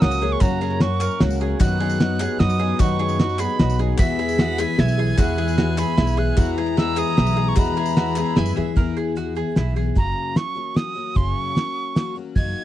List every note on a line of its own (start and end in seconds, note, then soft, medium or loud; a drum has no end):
0.00 0.38 F#1 medium
0.00 0.34 C#2 medium
0.00 0.38 F#2 medium
0.00 0.21 F#3 medium
0.00 0.22 F#3 medium
0.00 0.21 A#3 medium
0.00 1.58 A#3 medium
0.00 0.22 A#3 medium
0.00 0.22 C#4 medium
0.00 1.58 C#4 medium
0.00 0.21 C#4 medium
0.00 1.58 F#4 medium
0.00 0.21 F#4 medium
0.00 0.02 A#4 medium
0.00 0.20 A#4 medium
0.00 0.02 C#5 loud
0.00 0.21 C#5 medium
0.00 1.61 D#5 medium
0.00 0.34 D#6 loud
0.00 snare medium
0.00 ride medium
0.04 0.20 A#4 medium
0.11 clap soft
0.11 tambourine medium
0.21 0.40 F#3 medium
0.21 0.41 F#3 soft
0.21 0.40 A#3 medium
0.21 0.41 A#3 soft
0.21 0.40 C#4 medium
0.21 0.42 C#4 soft
0.21 0.41 G#4 medium
0.21 0.41 A#4 medium
0.21 0.40 A#4 medium
0.21 0.41 C#5 medium
0.32 0.43 C#6 medium
0.41 1.57 F#1 medium
0.41 0.81 F#2 medium
0.41 1.57 F#2 medium
0.41 1.06 F#2 medium
0.41 0.81 C#3 medium
0.41 0.59 F#3 medium
0.41 0.80 F#3 medium
0.41 0.59 A#3 medium
0.41 0.80 A#3 medium
0.41 0.59 C#4 medium
0.41 0.81 C#4 medium
0.41 0.61 F#4 medium
0.41 0.82 A#4 loud
0.41 0.60 C#5 loud
0.41 0.83 A#5 medium
0.41 kick loud
0.41 clap loud
0.41 ride medium
0.41 tambourine medium
0.61 0.78 F#3 medium
0.61 0.79 A#3 medium
0.61 0.79 C#4 medium
0.61 0.81 G#4 medium
0.61 0.79 A#4 medium
0.61 ride medium
0.61 tambourine soft
0.71 clap soft
0.80 0.98 F#3 medium
0.80 1.20 F#3 medium
0.80 0.98 A#3 medium
0.80 1.20 A#3 medium
0.80 0.99 C#4 medium
0.80 1.21 C#4 medium
0.80 1.01 F#4 medium
0.80 0.99 A#4 medium
0.80 1.22 A#4 medium
0.80 0.99 C#5 medium
0.80 1.21 C#6 medium
0.80 snare medium
0.80 ride medium
1.00 1.18 F#3 medium
1.00 1.18 A#3 medium
1.00 1.19 C#4 medium
1.00 1.19 A#4 medium
1.00 1.21 A#4 medium
1.00 1.20 C#5 medium
1.00 clap medium
1.00 tambourine medium
1.20 1.53 C#2 loud
1.20 1.38 F#3 medium
1.20 1.60 F#3 medium
1.20 1.38 A#3 medium
1.20 1.60 A#3 medium
1.20 1.38 C#4 medium
1.20 1.61 C#4 medium
1.20 1.41 F#4 medium
1.20 1.39 A#4 medium
1.20 1.61 A#4 medium
1.20 1.39 C#5 medium
1.20 snare loud
1.20 ride medium
1.30 tambourine medium
1.39 1.58 F#3 medium
1.39 1.59 A#3 medium
1.39 1.59 C#4 medium
1.39 1.60 G#4 medium
1.39 1.59 A#4 medium
1.39 1.59 C#5 loud
1.59 2.76 F#1 medium
1.59 2.00 F#2 loud
1.59 2.75 F#2 medium
1.59 2.25 F#2 medium
1.59 2.00 D#3 loud
1.59 1.79 F#3 medium
1.59 1.98 F#3 medium
1.59 1.79 B3 medium
1.59 3.96 B3 medium
1.59 2.00 B3 medium
1.59 1.79 D#4 medium
1.59 3.97 D#4 medium
1.59 2.00 D#4 medium
1.59 3.96 F#4 medium
1.59 1.80 F#4 medium
1.59 2.01 F#4 medium
1.59 1.79 B4 medium
1.59 1.79 D#5 loud
1.59 2.41 F#6 loud
1.59 kick loud
1.59 clap loud
1.59 ride medium
1.59 tambourine loud
1.80 1.98 F#3 medium
1.80 1.98 B3 medium
1.80 1.99 D#4 medium
1.80 2.00 G#4 medium
1.80 1.99 B4 medium
1.80 1.99 D#5 medium
1.80 ride medium
1.80 tambourine soft
1.89 clap soft
1.89 tambourine medium
1.99 2.18 F#3 medium
1.99 2.38 F#3 medium
1.99 2.19 B3 medium
1.99 2.40 B3 medium
1.99 2.19 D#4 medium
1.99 2.40 D#4 medium
1.99 2.20 F#4 medium
1.99 2.41 F#4 medium
1.99 2.19 B4 medium
1.99 2.19 D#5 medium
1.99 snare medium
1.99 ride medium
2.19 2.38 F#3 medium
2.19 2.38 B3 medium
2.19 2.39 D#4 medium
2.19 2.39 G#4 medium
2.19 2.39 B4 medium
2.19 2.39 F#5 medium
2.19 clap medium
2.19 tambourine medium
2.39 2.72 F#2 loud
2.39 2.59 F#3 medium
2.39 2.57 F#3 medium
2.39 2.58 B3 medium
2.39 2.60 B3 medium
2.39 2.58 D#4 medium
2.39 2.59 D#4 medium
2.39 2.59 F#4 medium
2.39 2.58 F#4 medium
2.39 2.82 D#6 loud
2.39 snare medium
2.39 ride medium
2.49 clap soft
2.49 tambourine medium
2.59 2.77 F#3 medium
2.59 2.79 F#3 soft
2.59 2.78 B3 medium
2.59 2.80 B3 soft
2.59 2.78 D#4 medium
2.59 2.80 D#4 medium
2.59 2.80 F#4 medium
2.59 2.79 G#4 medium
2.59 2.78 B4 medium
2.59 2.79 D#5 medium
2.79 3.95 F#1 medium
2.79 3.19 F#2 medium
2.79 3.95 F#2 medium
2.79 3.44 F#2 medium
2.79 3.20 D#3 medium
2.79 2.97 F#3 medium
2.79 3.18 F#3 medium
2.79 2.97 B3 medium
2.79 3.20 B3 medium
2.79 2.98 D#4 medium
2.79 3.20 D#4 medium
2.79 2.99 F#4 medium
2.79 3.20 F#4 medium
2.79 2.98 B4 medium
2.79 2.98 D#5 loud
2.79 3.42 C#6 medium
2.79 kick loud
2.79 clap medium
2.79 ride medium
2.79 tambourine medium
2.90 clap soft
2.99 3.17 F#3 medium
2.99 3.17 B3 medium
2.99 3.18 D#4 medium
2.99 3.19 G#4 medium
2.99 3.18 B4 medium
2.99 3.18 D#5 medium
2.99 clap soft
2.99 ride medium
3.09 clap soft
3.09 tambourine medium
3.19 3.37 F#3 medium
3.19 3.39 F#3 medium
3.19 3.37 B3 medium
3.19 3.40 B3 medium
3.19 3.38 D#4 medium
3.19 3.39 D#4 medium
3.19 3.39 F#4 medium
3.19 3.38 F#4 medium
3.19 3.38 B4 medium
3.19 3.38 D#5 medium
3.19 snare medium
3.19 ride medium
3.29 tambourine soft
3.39 3.57 F#3 medium
3.39 3.58 F#3 soft
3.39 3.58 B3 medium
3.39 3.60 B3 soft
3.39 3.58 D#4 medium
3.39 3.60 D#4 soft
3.39 3.59 F#4 soft
3.39 3.59 G#4 medium
3.39 3.58 B4 medium
3.39 3.58 F#5 medium
3.39 3.80 B5 loud
3.39 clap loud
3.39 tambourine medium
3.59 3.92 B1 medium
3.59 3.77 F#3 medium
3.59 3.79 F#3 medium
3.59 3.77 B3 medium
3.59 3.80 B3 medium
3.59 3.77 D#4 medium
3.59 3.79 D#4 medium
3.59 3.79 F#4 medium
3.59 3.78 F#4 medium
3.59 3.78 B4 medium
3.59 3.78 D#5 medium
3.59 snare medium
3.59 ride medium
3.69 tambourine medium
3.78 3.98 F#3 medium
3.78 3.99 F#3 soft
3.78 3.97 B3 medium
3.78 3.99 B3 soft
3.78 3.98 D#4 medium
3.78 4.00 D#4 medium
3.78 3.99 F#4 soft
3.78 3.99 G#4 medium
3.78 3.97 B4 medium
3.78 3.98 D#5 medium
3.98 5.14 E2 medium
3.98 4.63 E2 medium
3.98 8.72 E3 medium
3.98 5.14 E3 medium
3.98 4.39 E3 medium
3.98 4.16 G#3 medium
3.98 4.17 B3 medium
3.98 4.40 B3 medium
3.98 8.72 E4 medium
3.98 4.17 E4 medium
3.98 4.41 E4 medium
3.98 4.19 F#4 medium
3.98 8.72 G#4 medium
3.98 4.42 G#4 loud
3.98 8.72 B4 medium
3.98 4.17 B4 medium
3.98 4.18 E5 medium
3.98 4.41 E5 medium
3.98 4.81 B6 loud
3.98 kick loud
3.98 clap loud
3.98 ride medium
3.98 tambourine medium
4.18 4.37 G#3 medium
4.18 4.37 B3 medium
4.18 4.38 E4 medium
4.18 4.38 G#4 medium
4.18 4.38 B4 medium
4.18 4.38 E5 medium
4.18 ride medium
4.18 tambourine soft
4.29 clap soft
4.29 tambourine medium
4.39 4.59 E3 medium
4.39 4.56 G#3 medium
4.39 4.57 B3 medium
4.39 4.59 B3 medium
4.39 4.57 E4 medium
4.39 4.60 E4 medium
4.39 4.59 F#4 medium
4.39 4.58 G#4 medium
4.39 4.57 B4 medium
4.39 4.58 E5 medium
4.39 4.60 F#5 loud
4.39 snare medium
4.39 ride medium
4.58 4.76 G#3 medium
4.58 4.76 B3 medium
4.58 4.79 B3 soft
4.58 4.77 E4 medium
4.58 4.79 E4 soft
4.58 4.79 G#4 medium
4.58 4.78 G#4 medium
4.58 4.77 B4 medium
4.58 4.77 E5 loud
4.58 6.39 G#5 loud
4.58 clap medium
4.58 tambourine medium
4.78 5.11 B1 medium
4.78 5.18 E3 medium
4.78 4.96 G#3 medium
4.78 4.97 B3 medium
4.78 5.19 B3 medium
4.78 4.97 E4 medium
4.78 4.98 E4 medium
4.78 5.20 E4 medium
4.78 4.97 B4 medium
4.78 4.97 E5 medium
4.78 5.20 G#6 loud
4.78 snare medium
4.78 ride medium
4.82 5.20 G#4 medium
4.88 clap soft
4.88 tambourine medium
4.98 5.16 G#3 medium
4.98 5.17 B3 medium
4.98 5.17 E4 medium
4.98 5.18 G#4 medium
4.98 5.17 B4 medium
4.98 5.17 E5 medium
5.18 5.83 E2 medium
5.18 6.34 E2 medium
5.18 5.58 E3 medium
5.18 6.34 E3 medium
5.18 5.36 G#3 medium
5.18 5.37 B3 medium
5.18 5.59 B3 medium
5.18 5.37 E4 medium
5.18 5.60 E4 medium
5.18 5.38 F#4 medium
5.18 5.61 G#4 loud
5.18 5.37 B4 medium
5.18 5.37 E5 loud
5.18 5.80 F#6 loud
5.18 kick loud
5.18 clap medium
5.18 ride medium
5.18 tambourine medium
5.38 5.56 G#3 medium
5.38 5.56 B3 medium
5.38 5.57 E4 medium
5.38 5.57 G#4 medium
5.38 5.57 B4 medium
5.38 5.57 E5 medium
5.38 ride medium
5.38 tambourine soft
5.48 clap soft
5.48 tambourine medium
5.57 5.78 E3 medium
5.57 5.75 G#3 medium
5.57 5.76 B3 medium
5.57 5.79 B3 medium
5.57 5.76 E4 medium
5.57 5.79 E4 medium
5.57 5.77 F#4 medium
5.57 5.77 G#4 medium
5.57 5.77 B4 medium
5.57 5.77 E5 medium
5.57 snare medium
5.57 ride medium
5.77 5.96 G#3 medium
5.77 5.96 B3 medium
5.77 5.96 E4 medium
5.77 5.98 E4 soft
5.77 5.97 G#4 medium
5.77 5.98 G#4 soft
5.77 5.97 B4 medium
5.77 5.97 E5 medium
5.77 6.20 B5 loud
5.77 clap medium
5.77 tambourine medium
5.82 5.98 B3 soft
5.97 6.30 B1 medium
5.97 6.18 E3 medium
5.97 6.16 G#3 medium
5.97 6.16 B3 medium
5.97 6.18 B3 medium
5.97 6.17 E4 medium
5.97 6.15 G#4 medium
5.97 6.17 B4 medium
5.97 6.17 E5 medium
5.97 snare medium
5.97 ride medium
6.07 clap soft
6.07 tambourine medium
6.17 6.35 G#3 medium
6.17 6.36 B3 medium
6.17 6.36 B3 soft
6.17 6.36 E4 medium
6.17 6.37 E4 medium
6.17 6.37 G#4 medium
6.17 6.37 B4 medium
6.17 6.37 E5 medium
6.17 6.51 F#6 medium
6.37 7.53 E2 medium
6.37 7.02 E2 loud
6.37 6.76 E3 medium
6.37 7.53 E3 medium
6.37 6.56 G#3 medium
6.37 6.56 B3 medium
6.37 6.77 B3 medium
6.37 6.56 E4 medium
6.37 6.78 E4 loud
6.37 6.57 F#4 loud
6.37 6.79 G#4 medium
6.37 6.56 B4 medium
6.37 6.57 E5 medium
6.37 8.38 A#5 loud
6.37 kick loud
6.37 clap medium
6.37 ride medium
6.37 tambourine loud
6.57 6.75 G#3 medium
6.57 6.76 B3 medium
6.57 6.76 E4 medium
6.57 6.77 G#4 medium
6.57 6.76 B4 medium
6.57 6.77 E5 medium
6.57 ride medium
6.57 tambourine soft
6.67 clap soft
6.76 7.16 E3 medium
6.76 6.95 G#3 medium
6.76 6.96 B3 medium
6.76 7.17 B3 medium
6.76 6.96 E4 medium
6.76 7.18 E4 medium
6.76 6.96 F#4 medium
6.76 7.19 G#4 medium
6.76 6.96 B4 medium
6.76 6.97 D#5 medium
6.76 7.00 E6 medium
6.76 snare medium
6.76 ride medium
6.97 7.15 G#3 medium
6.97 7.15 B3 medium
6.97 7.16 E4 medium
6.97 7.17 G#4 medium
6.97 7.16 B4 medium
6.97 7.16 E5 medium
6.97 7.50 D#6 loud
6.97 clap medium
6.97 tambourine medium
7.16 7.50 B1 medium
7.16 7.37 E3 medium
7.16 7.34 G#3 medium
7.16 7.35 B3 medium
7.16 7.37 B3 medium
7.16 7.35 E4 medium
7.16 7.36 E4 medium
7.16 7.35 G#4 medium
7.16 7.35 B4 medium
7.16 snare loud
7.16 ride medium
7.26 clap soft
7.26 tambourine medium
7.36 7.55 G#3 medium
7.36 7.55 B3 medium
7.36 7.57 B3 soft
7.36 7.56 E4 medium
7.36 7.57 E4 soft
7.36 7.57 G#4 medium
7.36 7.56 G#4 medium
7.36 7.56 B4 medium
7.36 7.56 E5 medium
7.49 7.57 C#6 medium
7.56 8.72 E2 medium
7.56 8.21 E2 medium
7.56 7.95 E3 medium
7.56 8.72 E3 medium
7.56 7.75 G#3 medium
7.56 7.75 B3 medium
7.56 7.96 B3 medium
7.56 7.75 E4 medium
7.56 7.97 E4 loud
7.56 7.76 F#4 medium
7.56 7.98 G#4 medium
7.56 7.76 B4 medium
7.56 7.76 D#5 loud
7.56 8.53 B5 medium
7.56 kick loud
7.56 clap medium
7.56 ride medium
7.56 tambourine medium
7.66 clap soft
7.76 7.95 G#3 medium
7.76 7.95 B3 medium
7.76 7.95 E4 medium
7.76 7.96 G#4 medium
7.76 7.96 B4 medium
7.76 7.96 E5 medium
7.76 ride medium
7.76 tambourine soft
7.86 clap soft
7.86 tambourine medium
7.96 8.16 E3 medium
7.96 8.15 G#3 medium
7.96 8.15 B3 medium
7.96 8.15 E4 medium
7.96 8.16 E4 medium
7.96 8.16 F#4 medium
7.96 8.14 G#4 medium
7.96 8.16 B4 medium
7.96 8.16 E5 medium
7.96 snare medium
7.96 ride medium
8.06 tambourine soft
8.15 8.35 G#3 medium
8.15 8.35 B3 medium
8.15 8.35 B3 soft
8.15 8.36 E4 medium
8.15 8.37 E4 soft
8.15 8.36 G#4 medium
8.15 8.36 B4 medium
8.15 8.36 E5 medium
8.15 clap medium
8.15 tambourine medium
8.26 clap soft
8.36 8.55 F#2 medium
8.36 8.74 E3 medium
8.36 8.55 G#3 medium
8.36 8.75 B3 medium
8.36 8.55 B3 medium
8.36 8.56 E4 medium
8.36 8.55 E4 medium
8.36 8.76 E4 medium
8.36 8.77 G#4 medium
8.36 8.56 B4 medium
8.36 8.56 E5 medium
8.36 8.58 G#5 loud
8.36 snare loud
8.36 ride medium
8.46 tambourine medium
8.56 8.75 E2 medium
8.56 8.75 G#3 medium
8.56 8.75 B3 medium
8.56 8.76 E4 medium
8.56 8.76 G#4 medium
8.56 8.76 B4 medium
8.56 8.77 E5 medium
8.56 8.76 E5 medium
8.56 clap soft
8.76 9.41 E2 medium
8.76 9.14 E3 medium
8.76 9.15 B3 medium
8.76 9.16 E4 medium
8.76 9.17 G#4 loud
8.76 8.96 A#4 medium
8.76 kick loud
8.76 closed hi-hat medium
8.97 9.16 G#4 medium
9.16 9.36 E3 medium
9.16 9.37 B3 medium
9.16 9.36 E4 medium
9.16 9.36 F#4 medium
9.16 9.34 G#4 medium
9.16 closed hi-hat medium
9.35 9.56 B3 soft
9.35 9.56 E4 soft
9.35 9.56 G#4 medium
9.56 9.89 B1 medium
9.56 9.76 E3 medium
9.56 9.77 B3 medium
9.56 9.76 E4 medium
9.56 9.75 G#4 medium
9.56 snare medium
9.56 closed hi-hat medium
9.76 9.96 B3 soft
9.76 9.96 E4 soft
9.76 9.96 G#4 soft
9.76 9.96 G#4 medium
9.95 10.12 F#1 medium
9.95 10.36 F#2 medium
9.95 10.36 C#3 medium
9.95 10.34 F#3 medium
9.95 10.36 A#3 medium
9.95 10.36 C#4 medium
9.95 10.37 F#4 medium
9.95 10.38 A#5 medium
9.95 kick medium
9.95 closed hi-hat soft
10.35 10.55 F#3 medium
10.35 10.55 C#4 medium
10.35 10.54 F#4 medium
10.35 10.78 C#6 medium
10.35 snare medium
10.35 closed hi-hat soft
10.55 10.73 F#3 soft
10.55 10.74 A#3 soft
10.55 10.75 C#4 soft
10.55 10.76 F#4 soft
10.74 10.95 F#3 medium
10.74 10.96 A#3 medium
10.74 10.94 C#4 medium
10.74 10.94 F#4 medium
10.74 11.18 D#6 medium
10.74 snare medium
10.74 closed hi-hat medium
10.95 11.15 F#3 soft
10.95 11.15 A#3 soft
10.95 11.15 C#4 soft
10.95 11.15 F#4 soft
11.15 11.32 F#1 medium
11.15 11.55 F#2 medium
11.15 11.56 C#3 medium
11.15 11.55 F#3 medium
11.15 11.56 A#3 medium
11.15 11.56 C#4 medium
11.15 11.58 F#4 medium
11.15 11.33 C6 loud
11.15 kick medium
11.15 closed hi-hat medium
11.33 12.16 C#6 loud
11.55 11.95 F#3 medium
11.55 11.96 A#3 medium
11.55 11.98 F#4 medium
11.55 snare medium
11.55 closed hi-hat medium
11.96 12.16 F#3 medium
11.96 12.16 A#3 medium
11.96 12.16 C#4 medium
11.96 12.15 F#4 medium
11.96 snare medium
11.96 closed hi-hat medium
12.16 12.35 F#3 soft
12.16 12.36 A#3 soft
12.16 12.36 C#4 soft
12.16 12.36 F#4 medium
12.36 12.52 F#1 medium
12.36 12.64 F#3 medium
12.36 12.64 A#3 medium
12.36 12.64 D#4 medium
12.36 12.64 F#4 medium
12.36 12.64 G#6 loud
12.36 kick loud
12.36 closed hi-hat medium